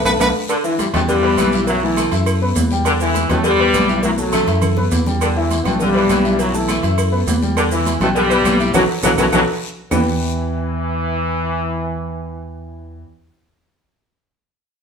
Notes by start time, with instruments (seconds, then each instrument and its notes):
0.05 fingered electric bass B1, grand piano A4 B4 E5, trumpet B4, cowbell, high conga, high timbale, long guiro, claves, maracas
0.19 fingered electric bass B1, grand piano A4 B4 E5, trumpet B4, cowbell, high conga, high timbale, long guiro, claves, maracas
0.49 trombone section D3 D4, saxophone section D3, cowbell, high conga, low agogo, long guiro, claves, maracas
0.64 grand piano E3 E4 E5, trombone section E3 E4, high conga, maracas
0.78 trombone section G2 G3, cowbell, high conga, low timbale, low agogo, short guiro, maracas
0.93 fingered electric bass E2, trombone section A2 A3, saxophone section B2, grand piano G3 G4 G5, cowbell, high conga, low conga, low agogo, short guiro, claves, maracas
1.08 trombone section G2 G3, saxophone section D3, cowbell, high conga, low conga, long guiro, maracas
1.22 saxophone section E3, grand piano B3 B4 B5, high conga, low agogo
1.37 fingered electric bass B1, saxophone section E3, cowbell, high conga, low timbale, low agogo, short guiro, claves, maracas
1.52 grand piano E4 E5 E6, short guiro, maracas
1.66 trombone section F#2 F#3, grand piano E3 E4 E5, cowbell, high conga, low agogo, long guiro, maracas
1.81 trombone section E3 E4, grand piano A3 A4 A5
1.97 saxophone section A3, cowbell, high conga, low timbale, low agogo, short guiro, claves, maracas
2.11 fingered electric bass F#2, grand piano E4 E5 E6, cowbell, high conga, low agogo, short guiro, maracas
2.26 cowbell, high conga, low agogo, long guiro, claves, maracas
2.42 grand piano B3 B4 B5
2.56 fingered electric bass E2, cowbell, high conga, low timbale, low agogo, short guiro, maracas
2.71 grand piano G3 G4 G5, high conga, short guiro, maracas
2.85 saxophone section D3, trombone section D3 D4, cowbell, high conga, low agogo, long guiro, claves, maracas
3.00 grand piano E3 E4 E5, trombone section E3 E4, maracas
3.14 cowbell, high conga, low timbale, low agogo, short guiro, maracas
3.29 fingered electric bass E2, trombone section A2 A3, saxophone section B2, grand piano G3 G4 G5, cowbell, high conga, low conga, low agogo, short guiro, claves, maracas
3.43 trombone section G2 G3, saxophone section D3, cowbell, high conga, long guiro, maracas
3.58 saxophone section E3, grand piano B3 B4 B5, high conga, low agogo
3.73 fingered electric bass B1, saxophone section E3, cowbell, high conga, low timbale, low agogo, short guiro, claves, maracas
3.88 grand piano E4 E5 E6, short guiro, maracas
4.03 trombone section F#2 F#3, grand piano E3 E4 E5, cowbell, high conga, low agogo, long guiro, maracas
4.18 trombone section F#2 F#3, grand piano A3 A4 A5, high conga, maracas
4.32 saxophone section A3, cowbell, low conga, low timbale, low agogo, short guiro, claves, maracas
4.47 fingered electric bass F#2, grand piano E4 E5 E6, cowbell, high conga, low agogo, short guiro, maracas
4.62 cowbell, low conga, low agogo, long guiro, claves, maracas
4.77 grand piano B3 B4 B5, low conga
4.92 fingered electric bass E2, cowbell, low timbale, low agogo, short guiro, maracas
5.06 grand piano G3 G4 G5, low conga, short guiro, maracas
5.21 saxophone section D3, trombone section D3 D4, cowbell, high conga, low agogo, long guiro, claves, maracas
5.36 grand piano E3 E4 E5, trombone section E3 E4, high conga
5.50 cowbell, high conga, low timbale, low agogo, short guiro, maracas
5.63 fingered electric bass B1, saxophone section B2, grand piano G3 G4 G5, trombone section B3, cowbell, high conga, low conga, low agogo, short guiro, claves, maracas
5.67 trombone section A2 A3
5.79 trombone section G2 G3, saxophone section D3, cowbell, high conga, low conga, long guiro, maracas
5.94 saxophone section E3, grand piano B3 B4 B5, high conga, low agogo
6.09 fingered electric bass B1, saxophone section E3, cowbell, high conga, low timbale, low agogo, short guiro, claves, maracas
6.25 grand piano E4 E5 E6, short guiro, maracas
6.39 trombone section F#2 F#3, grand piano E3 E4 E5, cowbell, high conga, low agogo, long guiro, maracas
6.54 trombone section E3 E4, grand piano A3 A4 A5, maracas
6.68 saxophone section A3, cowbell, high conga, low timbale, low agogo, short guiro, claves, maracas
6.83 fingered electric bass F#2, grand piano E4 E5 E6, cowbell, high conga, low agogo, short guiro, maracas
6.98 cowbell, low agogo, long guiro, claves, maracas
7.12 grand piano B3 B4 B5, high conga
7.27 fingered electric bass E2, cowbell, high conga, low timbale, low agogo, short guiro, maracas
7.42 grand piano G3 G4 G5, high conga, short guiro, maracas
7.57 saxophone section D3, trombone section D3 D4, cowbell, high conga, low agogo, long guiro, claves, maracas
7.71 grand piano E3 E4 E5, trombone section E3 E4, high conga, maracas
7.86 cowbell, high conga, low timbale, low agogo, short guiro, maracas
8.00 fingered electric bass B1, trombone section A2 A3, saxophone section B2, grand piano G3 G4 G5, cowbell, high conga, low conga, low agogo, short guiro, claves, maracas
8.15 trombone section G2 G3, saxophone section D3, cowbell, long guiro, maracas
8.30 saxophone section E3, grand piano B3 B4 B5, high conga, low agogo, maracas
8.44 fingered electric bass B1, saxophone section E3, cowbell, high conga, low timbale, low agogo, short guiro, claves, maracas
8.60 grand piano E4 E5 E6, short guiro, maracas
8.74 fingered electric bass B1, saxophone section B2 E3 F#3, trombone section B2 E3 F#3, grand piano F#4 A4 B4, cowbell, low conga, high timbale, long guiro, claves, maracas
9.03 fingered electric bass B1, saxophone section B2 E3 F#3, trombone section B2 E3 F#3, grand piano F#4 A4 B4, cowbell, low conga, high timbale, long guiro, claves, maracas
9.18 fingered electric bass B1, saxophone section B2 E3 F#3, trombone section B2 E3 F#3, grand piano F#4 A4 B4, cowbell, low conga, high timbale, long guiro, claves, maracas
9.32 fingered electric bass B1, saxophone section B2 E3 F#3, trombone section B2 E3 F#3, grand piano F#4 A4 B4, cowbell, low conga, high timbale, long guiro, claves, maracas
9.91 fingered electric bass E2, saxophone section E3, grand piano E3 B3 D4 E4 G4 B4, trombone section E3, low bongo, low conga, low timbale, long guiro, claves, maracas